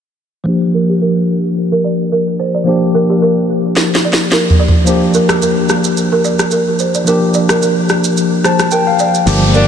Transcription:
0.44 2.61 F3 medium
0.44 2.62 A#3 medium
0.44 2.63 D4 medium
0.44 0.58 C5 medium
0.49 2.64 G4 medium
0.74 0.85 A#4 medium
0.89 0.98 G4 medium
1.02 1.21 A#4 medium
1.72 1.81 A#4 medium
1.84 1.95 D5 medium
2.12 2.23 A#4 medium
2.39 2.50 C5 medium
2.55 2.63 D5 medium
2.64 4.81 F3 medium
2.64 4.82 A#3 medium
2.64 4.83 D4 medium
2.64 2.78 C5 medium
2.69 4.84 G4 medium
2.95 3.05 A#4 medium
3.10 3.18 G4 medium
3.22 3.42 A#4 medium
3.77 snare medium
3.95 snare medium
4.05 4.15 D5 medium
4.13 snare medium
4.32 4.43 A#4 medium
4.32 snare medium
4.50 floor tom medium
4.60 4.70 D5 medium
4.68 floor tom medium
4.84 7.02 F3 medium
4.84 7.02 A#3 medium
4.84 7.03 D4 medium
4.84 4.98 C5 medium
4.84 shaker medium
4.89 7.04 G4 medium
5.14 5.25 A#4 medium
5.14 shaker medium
5.29 5.39 G4 medium
5.29 cross-stick loud
5.29 shaker medium
5.42 5.62 A#4 medium
5.42 shaker medium
5.69 cross-stick medium
5.69 shaker soft
5.84 shaker medium
5.97 shaker medium
6.12 6.21 A#4 medium
6.25 6.35 D5 medium
6.25 shaker soft
6.39 cross-stick medium
6.39 shaker medium
6.51 6.63 A#4 medium
6.51 shaker medium
6.79 6.91 C5 medium
6.79 shaker soft
6.95 7.04 D5 medium
6.95 shaker medium
7.04 9.22 F3 medium
7.04 9.23 A#3 medium
7.04 9.23 D4 medium
7.04 7.18 A#4 medium
7.04 shaker medium
7.09 9.24 G4 medium
7.34 7.46 D5 medium
7.34 shaker soft
7.49 7.59 A#4 medium
7.49 cross-stick loud
7.49 shaker medium
7.62 7.82 A#4 medium
7.62 shaker medium
7.89 cross-stick medium
7.89 shaker soft
8.04 shaker medium
8.17 shaker medium
8.44 8.56 C5 medium
8.44 8.70 A5 medium
8.44 cross-stick medium
8.44 shaker soft
8.59 cross-stick loud
8.59 shaker medium
8.71 8.83 A#4 medium
8.71 8.86 G5 medium
8.71 shaker medium
8.87 9.24 F5 medium
8.99 9.11 D5 medium
8.99 shaker medium
9.15 shaker medium
9.26 9.68 G1 loud
9.26 9.50 F3 medium
9.26 9.51 A#3 medium
9.26 9.51 D4 medium
9.26 9.52 G4 loud
9.26 9.38 C5 medium
9.26 downlifter medium
9.26 low conga medium
9.26 shaker medium
9.43 high conga medium
9.53 9.68 F3 medium
9.53 9.68 A#3 medium
9.53 9.68 D4 medium
9.53 9.62 F#4 medium
9.53 9.66 A#4 medium
9.53 shaker medium
9.62 9.68 G4 medium

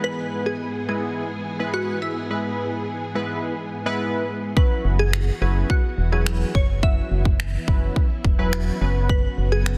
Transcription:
0.00 4.53 G#2 medium
0.00 4.53 E3 medium
0.00 0.66 G#3 medium
0.00 0.66 B3 medium
0.00 8.77 B3 medium
0.00 0.66 E4 medium
0.00 4.53 G#4 medium
0.00 0.66 B4 loud
0.00 0.43 B4 loud
0.46 0.87 G#4 loud
0.89 1.27 G#3 medium
0.89 1.27 B3 medium
0.89 1.27 E4 medium
0.89 1.41 G#4 medium
0.89 1.27 G#4 medium
1.59 1.97 G#3 medium
1.59 1.97 B3 medium
1.59 1.98 E4 medium
1.59 1.98 B4 medium
1.74 2.00 F#4 loud
2.02 2.55 E4 loud
2.30 2.76 G#3 medium
2.30 2.76 B3 medium
2.30 2.76 E4 medium
2.30 2.76 B4 medium
3.15 3.53 G#3 medium
3.15 3.53 B3 medium
3.15 3.53 E4 medium
3.15 3.53 B4 medium
3.86 4.24 G#3 medium
3.86 4.24 B3 medium
3.86 4.24 E4 medium
3.86 4.24 B4 loud
4.56 8.77 E3 medium
4.56 5.02 F#3 medium
4.56 5.02 C#4 medium
4.56 5.02 E4 medium
4.56 6.81 F#4 medium
4.56 5.02 B4 medium
4.56 4.96 B4 medium
4.56 kick loud
4.85 5.31 F#1 loud
4.99 5.41 G#4 medium
5.13 finger snap loud
5.41 5.65 F#1 medium
5.41 5.79 F#3 medium
5.41 5.79 C#4 medium
5.41 5.80 E4 medium
5.41 5.71 G#4 medium
5.41 5.80 B4 medium
5.70 6.14 F#4 medium
5.70 kick medium
5.98 6.44 E1 medium
6.12 6.50 F#3 medium
6.12 6.50 C#4 medium
6.12 6.50 E4 medium
6.12 6.56 G#4 medium
6.12 6.50 B4 medium
6.26 finger snap loud
6.55 7.01 F#1 medium
6.55 6.68 C#5 loud
6.55 kick loud
6.83 7.29 F#3 medium
6.83 7.29 C#4 medium
6.83 7.29 E4 medium
6.83 8.79 E4 medium
6.83 7.29 F#4 medium
6.83 7.92 E5 loud
6.83 kick loud
7.11 7.57 F#1 loud
7.25 kick medium
7.40 finger snap loud
7.68 7.91 F#1 medium
7.68 8.06 F#3 medium
7.68 8.06 C#4 medium
7.68 8.06 E4 medium
7.68 8.06 B4 medium
7.68 kick loud
7.96 kick medium
8.25 8.71 E1 medium
8.25 kick medium
8.38 8.77 F#3 loud
8.38 8.77 C#4 medium
8.38 8.77 E4 medium
8.38 8.77 B4 loud
8.53 finger snap loud
8.81 9.27 F#1 medium
8.81 9.78 C#3 medium
8.81 9.72 F#3 medium
8.81 9.72 B3 medium
8.81 9.78 B3 medium
8.81 9.72 C#4 medium
8.81 9.78 F#4 medium
8.81 9.72 B4 loud
9.09 9.53 B4 loud
9.09 kick loud
9.38 9.78 F#1 medium
9.52 9.78 G#4 medium
9.66 finger snap loud

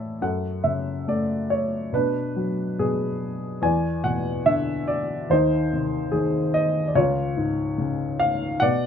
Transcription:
0.00 0.19 A2 soft
0.00 0.17 E3 medium
0.00 0.18 C#4 medium
0.00 0.18 E4 medium
0.00 0.23 A4 medium
0.00 0.23 C#5 medium
0.00 0.23 D5 medium
0.22 1.88 F#2 medium
0.22 1.89 A4 soft
0.22 0.66 F#5 medium
0.64 1.88 C#3 soft
0.64 1.08 E5 medium
1.08 1.90 A3 soft
1.08 1.52 D5 medium
1.50 1.90 C#5 medium
1.92 2.78 B2 soft
1.92 3.59 D4 medium
1.92 2.81 B4 medium
2.36 3.58 F#3 soft
2.79 3.60 B2 soft
2.79 3.38 G#4 medium
3.62 5.26 E2 medium
3.62 4.86 D5 medium
3.62 4.05 G#5 medium
4.04 5.26 B2 soft
4.04 4.47 F#5 medium
4.46 5.28 D3 medium
4.46 4.89 E5 medium
4.88 5.31 D5 medium
5.30 6.91 D#2 medium
5.30 6.92 D#4 medium
5.30 6.09 C5 medium
5.73 6.92 C3 soft
6.12 6.92 D#3 soft
6.12 6.50 G#4 medium
6.54 6.89 D#5 medium
6.88 6.95 D5 medium
6.95 8.57 C#2 medium
6.95 8.58 F4 medium
6.95 7.74 C#5 medium
7.37 8.57 G#2 medium
7.78 8.58 C#3 medium
8.20 8.62 F5 medium
8.60 8.87 B2 medium
8.60 8.87 D5 medium
8.60 8.87 F#5 loud

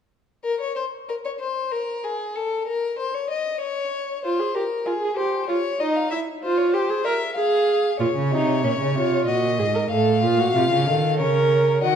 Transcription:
0.44 0.59 A#4 medium
0.61 0.75 C#5 medium
0.76 0.84 C5 medium
1.09 1.15 A#4 medium
1.25 1.31 C#5 medium
1.40 1.73 C5 medium
1.72 2.05 A#4 medium
2.04 2.37 G#4 medium
2.36 2.67 A4 medium
2.67 2.98 A#4 medium
2.99 3.16 C5 medium
3.15 3.30 C#5 medium
3.30 3.60 D#5 medium
3.61 4.23 C#5 medium
4.24 4.41 F4 medium
4.24 4.57 C5 medium
4.40 4.54 G#4 medium
4.55 4.63 G4 medium
4.55 4.87 A#4 medium
4.86 4.92 F4 medium
4.86 5.18 G#4 medium
5.02 5.16 G#4 medium
5.16 5.48 G4 medium
5.16 5.48 C5 medium
5.48 5.56 F4 medium
5.48 5.81 C#5 medium
5.80 6.11 D#4 medium
5.80 5.97 D#5 medium
5.96 6.11 F5 medium
6.11 6.19 E4 medium
6.11 6.19 E5 medium
6.43 6.75 F4 medium
6.43 6.59 C5 medium
6.58 6.72 C#5 medium
6.73 6.91 G4 medium
6.73 7.06 C5 medium
6.90 7.04 G#4 medium
7.05 7.13 A#4 medium
7.05 7.35 E5 medium
7.35 7.99 G#4 loud
7.35 7.98 F5 medium
8.00 8.06 A#2 medium
8.00 8.08 F4 medium
8.00 9.25 C#5 medium
8.16 8.34 C#3 medium
8.32 8.65 C3 medium
8.32 8.63 D#4 medium
8.64 8.79 A#2 medium
8.64 8.72 C#4 medium
8.79 8.97 C#3 medium
8.95 9.27 C3 medium
8.95 9.29 F4 medium
9.27 9.60 A#2 medium
9.27 9.58 F#4 medium
9.27 9.90 D#5 medium
9.59 9.90 G#2 medium
9.59 9.65 G#4 medium
9.75 9.81 A#4 medium
9.91 10.25 A2 loud
9.91 10.23 A4 medium
9.91 11.17 F5 medium
10.23 10.55 A#2 loud
10.23 10.41 F4 medium
10.40 10.57 F#4 medium
10.55 10.71 C3 medium
10.55 10.87 F4 medium
10.72 10.89 C#3 medium
10.87 11.21 D#3 medium
10.87 11.21 A4 medium
11.19 11.84 C#3 medium
11.19 11.83 A#4 medium
11.19 11.83 C#5 medium
11.83 11.95 D#3 medium
11.83 11.95 F#4 medium
11.83 11.95 D#5 medium
11.83 11.95 F#5 medium

